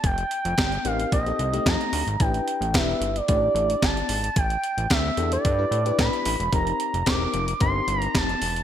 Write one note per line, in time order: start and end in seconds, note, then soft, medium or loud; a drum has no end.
0.04 0.24 F1 loud
0.04 0.88 G5 loud
0.04 kick loud
0.04 closed hi-hat loud
0.18 closed hi-hat soft
0.31 closed hi-hat medium
0.45 0.55 F1 medium
0.45 closed hi-hat medium
0.58 0.78 G1 medium
0.58 kick loud
0.58 snare loud
0.58 closed hi-hat loud
0.72 closed hi-hat soft
0.85 1.06 A1 medium
0.85 1.17 C4 medium
0.85 1.17 D#4 medium
0.85 1.17 G4 medium
0.85 1.17 A#4 medium
0.85 1.13 F5 loud
0.85 closed hi-hat medium
1.00 closed hi-hat medium
1.12 1.33 A#1 loud
1.12 1.69 D#5 loud
1.12 kick loud
1.12 closed hi-hat loud
1.26 1.47 C4 medium
1.26 1.47 D#4 medium
1.26 1.47 G4 medium
1.26 1.47 A4 medium
1.26 closed hi-hat soft
1.39 1.60 C2 medium
1.39 closed hi-hat medium
1.53 2.06 A3 medium
1.53 2.06 C4 medium
1.53 2.06 D#4 medium
1.53 2.06 G4 medium
1.53 closed hi-hat soft
1.66 1.77 F2 loud
1.66 2.22 A#5 loud
1.66 kick loud
1.66 snare loud
1.66 closed hi-hat medium
1.81 closed hi-hat soft
1.93 2.04 D2 medium
1.93 open hi-hat medium
2.07 2.17 G#1 loud
2.07 closed hi-hat medium
2.20 2.41 A1 medium
2.20 2.63 D4 medium
2.20 2.63 E4 medium
2.20 2.63 G4 medium
2.20 2.63 B4 medium
2.20 2.77 G5 loud
2.20 kick loud
2.20 closed hi-hat medium
2.34 closed hi-hat soft
2.48 closed hi-hat medium
2.61 2.76 A1 medium
2.61 closed hi-hat soft
2.74 2.95 E1 loud
2.74 3.17 D4 medium
2.74 3.17 E4 medium
2.74 3.17 G4 medium
2.74 3.17 B4 medium
2.74 3.18 E5 loud
2.74 kick loud
2.74 snare loud
2.74 closed hi-hat medium
3.01 3.21 G1 medium
3.01 closed hi-hat medium
3.16 3.85 D5 loud
3.16 closed hi-hat medium
3.28 3.49 A1 loud
3.28 4.12 D4 medium
3.28 4.12 E4 medium
3.28 4.13 G4 medium
3.28 4.13 D5 loud
3.28 kick loud
3.28 closed hi-hat loud
3.55 3.75 A1 medium
3.55 closed hi-hat medium
3.70 closed hi-hat medium
3.82 4.03 G1 loud
3.82 4.39 A5 loud
3.82 kick loud
3.82 snare loud
3.82 closed hi-hat medium
3.97 closed hi-hat soft
4.09 4.30 G#1 medium
4.09 open hi-hat medium
4.24 closed hi-hat medium
4.36 4.57 A1 loud
4.36 4.93 G5 loud
4.36 kick loud
4.36 closed hi-hat loud
4.50 closed hi-hat soft
4.64 closed hi-hat medium
4.78 4.87 A1 medium
4.78 closed hi-hat medium
4.90 5.11 D2 loud
4.90 5.32 E5 loud
4.90 kick loud
4.90 snare loud
4.90 closed hi-hat medium
5.17 5.38 E2 medium
5.17 5.49 D4 medium
5.17 5.49 E4 medium
5.17 5.49 G4 medium
5.17 5.49 A4 medium
5.17 closed hi-hat medium
5.32 6.01 D5 loud
5.32 closed hi-hat medium
5.45 5.65 G2 loud
5.45 kick loud
5.45 closed hi-hat loud
5.58 5.79 D4 medium
5.58 5.79 E4 medium
5.58 5.80 G4 medium
5.58 5.80 B4 medium
5.71 5.92 A2 medium
5.71 closed hi-hat medium
5.85 6.38 D4 medium
5.85 6.38 E4 medium
5.85 6.38 G4 medium
5.85 6.38 B4 medium
5.85 closed hi-hat soft
5.99 6.09 A2 loud
5.99 6.53 B5 loud
5.99 kick loud
5.99 snare loud
5.99 closed hi-hat medium
6.13 closed hi-hat soft
6.25 6.37 A1 loud
6.25 open hi-hat medium
6.40 6.49 E1 loud
6.40 closed hi-hat soft
6.52 6.73 F1 loud
6.52 6.95 C4 medium
6.52 6.95 D#4 medium
6.52 6.96 G4 medium
6.52 6.96 A#4 medium
6.52 7.09 A#5 loud
6.52 kick loud
6.52 closed hi-hat loud
6.67 closed hi-hat soft
6.80 closed hi-hat medium
6.94 7.04 F1 medium
6.94 closed hi-hat medium
7.06 7.27 E1 loud
7.06 7.49 C4 medium
7.06 7.49 D#4 medium
7.06 7.49 G4 medium
7.06 7.14 A4 medium
7.06 7.60 D6 loud
7.06 kick loud
7.06 snare loud
7.06 closed hi-hat medium
7.14 7.53 A#4 medium
7.34 7.54 F1 loud
7.34 closed hi-hat medium
7.48 closed hi-hat medium
7.60 7.81 G1 loud
7.60 8.45 C4 medium
7.60 8.45 D#4 medium
7.60 8.45 G4 medium
7.60 8.45 A#4 medium
7.60 8.01 C6 loud
7.60 kick loud
7.60 closed hi-hat loud
7.88 8.08 G1 loud
7.88 closed hi-hat medium
8.01 8.17 A#5 loud
8.01 closed hi-hat soft
8.15 8.35 F1 loud
8.15 8.63 A5 loud
8.15 kick loud
8.15 snare loud
8.15 closed hi-hat medium
8.29 closed hi-hat soft
8.42 8.62 E1 loud
8.42 open hi-hat medium
8.56 closed hi-hat medium